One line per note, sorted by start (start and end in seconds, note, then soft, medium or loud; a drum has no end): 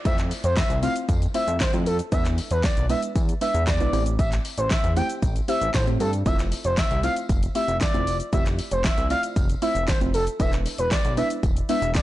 0.00 downlifter medium
0.05 0.33 F2 loud
0.05 0.54 A3 medium
0.05 0.54 C4 medium
0.05 0.54 E4 medium
0.05 0.54 F4 medium
0.05 0.55 C5 medium
0.05 0.16 E5 loud
0.05 kick loud
0.05 closed hi-hat medium
0.05 tambourine medium
0.05 shaker medium
0.18 clap medium
0.18 closed hi-hat medium
0.18 shaker medium
0.31 open hi-hat medium
0.31 tambourine medium
0.31 shaker medium
0.44 0.62 F2 medium
0.44 0.55 C5 medium
0.44 closed hi-hat medium
0.44 tambourine soft
0.44 shaker medium
0.57 0.79 E5 medium
0.57 kick loud
0.57 snare medium
0.57 clap loud
0.57 closed hi-hat medium
0.57 tambourine medium
0.57 shaker medium
0.70 0.88 C2 medium
0.70 closed hi-hat medium
0.70 shaker medium
0.83 1.15 A3 medium
0.83 1.16 C4 medium
0.83 1.16 E4 medium
0.83 1.16 F4 medium
0.83 1.16 C5 medium
0.83 0.94 F5 medium
0.83 open hi-hat medium
0.83 tambourine medium
0.83 shaker medium
0.96 closed hi-hat medium
0.96 shaker medium
1.09 1.27 F2 loud
1.09 kick loud
1.09 closed hi-hat medium
1.09 tambourine medium
1.09 shaker medium
1.22 closed hi-hat medium
1.22 tambourine soft
1.22 shaker medium
1.34 1.59 A3 medium
1.34 1.59 C4 medium
1.34 1.59 E4 medium
1.34 1.59 F4 medium
1.34 1.59 C5 medium
1.34 1.56 E5 medium
1.34 open hi-hat medium
1.34 tambourine medium
1.34 shaker medium
1.47 1.66 F2 loud
1.47 closed hi-hat medium
1.47 shaker medium
1.60 1.71 C5 medium
1.60 kick loud
1.60 snare loud
1.60 clap loud
1.60 closed hi-hat medium
1.60 tambourine medium
1.60 shaker medium
1.73 2.01 F2 loud
1.73 1.98 A3 medium
1.73 1.98 C4 medium
1.73 1.98 E4 medium
1.73 1.98 F4 medium
1.73 1.98 C5 medium
1.73 closed hi-hat soft
1.73 shaker soft
1.86 1.97 A4 medium
1.86 open hi-hat medium
1.86 tambourine medium
1.86 shaker medium
1.99 closed hi-hat medium
1.99 shaker medium
2.12 2.40 E2 loud
2.12 2.61 G#3 medium
2.12 2.61 B3 medium
2.12 2.61 D4 medium
2.12 2.61 E4 medium
2.12 2.61 B4 medium
2.12 2.23 E5 loud
2.12 kick loud
2.12 closed hi-hat medium
2.12 tambourine medium
2.12 shaker medium
2.25 clap medium
2.25 closed hi-hat medium
2.25 tambourine soft
2.25 shaker medium
2.38 open hi-hat medium
2.38 tambourine medium
2.38 shaker medium
2.51 2.69 E2 medium
2.51 2.62 B4 medium
2.51 closed hi-hat medium
2.51 tambourine soft
2.51 shaker medium
2.64 2.86 D5 medium
2.64 kick loud
2.64 snare medium
2.64 clap loud
2.64 closed hi-hat medium
2.64 tambourine medium
2.64 shaker medium
2.77 2.95 B1 medium
2.77 closed hi-hat medium
2.77 shaker medium
2.89 3.22 G#3 medium
2.89 3.22 B3 medium
2.89 3.22 D4 medium
2.89 3.23 E4 medium
2.89 3.23 B4 medium
2.89 3.01 E5 medium
2.89 open hi-hat medium
2.89 tambourine medium
2.89 shaker medium
3.03 closed hi-hat medium
3.03 shaker medium
3.15 3.34 E2 loud
3.15 kick loud
3.15 closed hi-hat medium
3.15 tambourine medium
3.15 shaker medium
3.29 closed hi-hat medium
3.29 shaker medium
3.41 3.66 G#3 medium
3.41 3.66 B3 medium
3.41 3.66 D4 medium
3.41 3.66 E4 medium
3.41 3.66 B4 medium
3.41 3.63 E5 medium
3.41 open hi-hat medium
3.41 tambourine medium
3.41 shaker medium
3.54 3.82 E2 loud
3.54 closed hi-hat medium
3.54 shaker medium
3.67 4.04 D5 loud
3.67 kick loud
3.67 snare loud
3.67 clap loud
3.67 closed hi-hat medium
3.67 tambourine medium
3.67 shaker medium
3.80 3.89 B1 medium
3.80 3.93 G#3 medium
3.80 3.93 B3 medium
3.80 3.93 D4 medium
3.80 3.92 E4 medium
3.80 3.93 B4 medium
3.80 closed hi-hat soft
3.80 shaker soft
3.93 4.39 A1 loud
3.93 4.76 A3 medium
3.93 4.76 C4 medium
3.93 4.76 E4 medium
3.93 4.76 G4 medium
3.93 4.76 C5 medium
3.93 open hi-hat medium
3.93 tambourine medium
3.93 shaker medium
4.06 closed hi-hat medium
4.06 shaker medium
4.19 4.30 E5 loud
4.19 kick loud
4.19 closed hi-hat medium
4.19 tambourine medium
4.19 shaker medium
4.32 clap medium
4.32 closed hi-hat medium
4.32 tambourine soft
4.32 shaker medium
4.45 open hi-hat medium
4.45 tambourine medium
4.45 shaker medium
4.58 4.76 A1 medium
4.58 4.69 C5 medium
4.58 closed hi-hat medium
4.58 shaker medium
4.71 4.93 E5 medium
4.71 kick loud
4.71 snare medium
4.71 clap loud
4.71 closed hi-hat medium
4.71 tambourine medium
4.71 shaker medium
4.84 5.02 E2 medium
4.84 closed hi-hat medium
4.84 shaker medium
4.96 5.29 A3 medium
4.96 5.29 C4 medium
4.96 5.29 E4 medium
4.96 5.29 G4 medium
4.96 5.30 C5 medium
4.96 5.07 G5 medium
4.96 open hi-hat medium
4.96 tambourine medium
4.96 shaker medium
5.09 closed hi-hat medium
5.09 tambourine soft
5.09 shaker medium
5.22 5.41 A1 loud
5.22 kick loud
5.22 closed hi-hat medium
5.22 tambourine medium
5.22 shaker medium
5.35 closed hi-hat medium
5.35 tambourine soft
5.35 shaker medium
5.48 5.73 A3 medium
5.48 5.73 C4 medium
5.48 5.73 E4 medium
5.48 5.73 G4 medium
5.48 5.73 C5 medium
5.48 5.70 E5 medium
5.48 open hi-hat medium
5.48 tambourine medium
5.48 shaker medium
5.61 5.70 A1 loud
5.61 closed hi-hat medium
5.61 shaker medium
5.74 5.98 A2 medium
5.74 5.85 C5 medium
5.74 kick loud
5.74 snare loud
5.74 clap loud
5.74 closed hi-hat medium
5.74 tambourine medium
5.74 shaker medium
5.87 6.12 A3 medium
5.87 6.12 C4 medium
5.87 6.12 E4 medium
5.87 6.12 G4 medium
5.87 6.12 C5 medium
5.87 closed hi-hat soft
5.87 shaker soft
6.00 6.23 G2 medium
6.00 6.11 A4 medium
6.00 open hi-hat medium
6.00 tambourine medium
6.00 shaker medium
6.13 closed hi-hat medium
6.13 shaker medium
6.26 6.53 F1 loud
6.26 6.75 A3 medium
6.26 6.75 C4 medium
6.26 6.75 E4 medium
6.26 6.75 F4 medium
6.26 6.75 C5 medium
6.26 6.37 E5 loud
6.26 kick loud
6.26 closed hi-hat medium
6.26 tambourine medium
6.26 shaker medium
6.39 clap medium
6.39 closed hi-hat medium
6.39 tambourine soft
6.39 shaker medium
6.52 open hi-hat medium
6.52 tambourine soft
6.52 shaker medium
6.64 6.83 F1 medium
6.64 6.76 C5 medium
6.64 closed hi-hat medium
6.64 tambourine soft
6.64 shaker medium
6.78 7.00 E5 medium
6.78 kick loud
6.78 snare loud
6.78 clap loud
6.78 closed hi-hat medium
6.78 tambourine medium
6.78 shaker medium
6.91 7.09 C2 medium
6.91 closed hi-hat medium
6.91 shaker medium
7.03 7.36 A3 medium
7.03 7.36 C4 medium
7.03 7.36 E4 medium
7.03 7.36 F4 medium
7.03 7.36 C5 medium
7.03 7.14 F5 medium
7.03 open hi-hat medium
7.03 tambourine medium
7.03 shaker medium
7.16 closed hi-hat medium
7.16 tambourine soft
7.16 shaker medium
7.29 7.48 F1 loud
7.29 kick loud
7.29 closed hi-hat medium
7.29 tambourine medium
7.29 shaker medium
7.42 closed hi-hat medium
7.42 tambourine soft
7.42 shaker medium
7.55 7.80 A3 medium
7.55 7.80 C4 medium
7.55 7.80 E4 medium
7.55 7.80 F4 medium
7.55 7.80 G4 medium
7.55 7.77 E5 medium
7.55 open hi-hat medium
7.55 tambourine soft
7.55 shaker medium
7.68 7.86 F1 loud
7.68 closed hi-hat medium
7.68 shaker medium
7.81 8.18 D5 loud
7.81 kick loud
7.81 snare loud
7.81 clap loud
7.81 closed hi-hat medium
7.81 tambourine medium
7.81 shaker medium
7.94 8.21 F1 medium
7.94 8.18 A3 medium
7.94 8.19 C4 medium
7.94 8.19 E4 medium
7.94 8.19 F4 medium
7.94 8.19 C5 medium
7.94 closed hi-hat soft
7.94 shaker soft
8.07 open hi-hat medium
8.07 tambourine medium
8.07 shaker medium
8.20 closed hi-hat medium
8.20 shaker medium
8.33 8.60 F1 loud
8.33 8.82 A3 medium
8.33 8.82 C4 medium
8.33 8.82 E4 medium
8.33 8.82 F4 medium
8.33 8.82 G4 medium
8.33 8.44 E5 loud
8.33 kick loud
8.33 closed hi-hat medium
8.33 tambourine medium
8.33 shaker medium
8.46 clap medium
8.46 closed hi-hat medium
8.46 tambourine soft
8.46 shaker medium
8.59 open hi-hat medium
8.59 tambourine soft
8.59 shaker medium
8.71 8.90 F1 medium
8.71 8.83 C5 medium
8.71 closed hi-hat medium
8.71 tambourine soft
8.71 shaker medium
8.84 9.06 E5 medium
8.84 kick loud
8.84 snare loud
8.84 clap loud
8.84 closed hi-hat medium
8.84 tambourine medium
8.84 shaker medium
8.97 9.16 C2 medium
8.97 closed hi-hat medium
8.97 shaker medium
9.10 9.43 A3 medium
9.10 9.43 C4 medium
9.10 9.43 E4 medium
9.10 9.43 F4 medium
9.10 9.43 D5 medium
9.10 9.21 F5 medium
9.10 open hi-hat medium
9.10 tambourine medium
9.10 shaker medium
9.23 closed hi-hat medium
9.23 tambourine soft
9.23 shaker medium
9.36 9.55 F1 loud
9.36 kick loud
9.36 closed hi-hat medium
9.36 tambourine medium
9.36 shaker medium
9.49 closed hi-hat medium
9.49 tambourine soft
9.49 shaker medium
9.62 9.87 A3 medium
9.62 9.87 C4 medium
9.62 9.87 E4 medium
9.62 9.87 F4 medium
9.62 9.87 C5 medium
9.62 9.84 E5 medium
9.62 open hi-hat medium
9.62 tambourine medium
9.62 shaker medium
9.75 9.93 F1 medium
9.75 closed hi-hat medium
9.75 shaker medium
9.88 9.99 C5 medium
9.88 kick loud
9.88 snare loud
9.88 clap loud
9.88 closed hi-hat medium
9.88 tambourine medium
9.88 shaker medium
10.01 10.28 F1 medium
10.01 10.25 A3 medium
10.01 10.25 C4 medium
10.01 10.26 E4 medium
10.01 10.26 F4 medium
10.01 10.26 C5 medium
10.01 closed hi-hat soft
10.01 shaker soft
10.14 10.25 A4 medium
10.14 open hi-hat medium
10.14 tambourine medium
10.14 shaker medium
10.27 closed hi-hat medium
10.27 shaker medium
10.40 10.67 E1 loud
10.40 10.89 G#3 medium
10.40 10.89 B3 medium
10.40 10.89 D4 medium
10.40 10.89 E4 medium
10.40 10.89 B4 medium
10.40 10.51 E5 loud
10.40 kick loud
10.40 closed hi-hat medium
10.40 tambourine medium
10.40 shaker medium
10.53 clap medium
10.53 closed hi-hat medium
10.53 shaker medium
10.66 open hi-hat medium
10.66 tambourine medium
10.66 shaker medium
10.78 10.97 E1 medium
10.78 10.90 B4 medium
10.78 closed hi-hat medium
10.78 tambourine soft
10.78 shaker medium
10.91 11.13 D5 medium
10.91 kick loud
10.91 snare medium
10.91 clap loud
10.91 closed hi-hat medium
10.91 tambourine medium
10.91 shaker medium
11.04 11.23 B1 medium
11.04 closed hi-hat medium
11.04 shaker medium
11.17 11.50 G#3 medium
11.17 11.50 B3 medium
11.17 11.50 D4 medium
11.17 11.50 E4 medium
11.17 11.50 B4 medium
11.17 11.28 E5 medium
11.17 open hi-hat medium
11.17 tambourine medium
11.17 shaker medium
11.30 closed hi-hat medium
11.30 shaker medium
11.43 11.61 E1 loud
11.43 kick loud
11.43 closed hi-hat medium
11.43 tambourine medium
11.43 shaker medium
11.56 closed hi-hat medium
11.56 shaker medium
11.69 11.94 G#3 medium
11.69 11.94 B3 medium
11.69 11.94 D4 medium
11.69 11.94 E4 medium
11.69 11.94 B4 medium
11.69 11.91 E5 medium
11.69 open hi-hat medium
11.69 tambourine soft
11.69 shaker medium
11.82 12.00 E1 loud
11.82 closed hi-hat medium
11.82 shaker medium
11.95 12.02 D5 loud
11.95 kick loud
11.95 snare loud
11.95 clap loud
11.95 closed hi-hat medium
11.95 tambourine medium
11.95 shaker medium